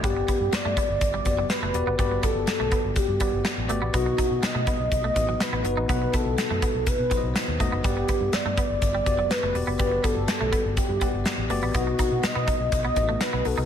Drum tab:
HH |xxxxxxxx|xxxxxxxx|xxxxxxxx|xxxxxxxx|
SD |--o---o-|--o---o-|--o---o-|--o---o-|
BD |oo-ooo--|oo-ooo--|oo-ooo--|oo-ooo-o|

HH |xxxxxxxo|xxxxxxxo|xxxxxxxo|
SD |--o---o-|--o---o-|--o---o-|
BD |oo-ooo--|oo-ooo--|oo-ooo--|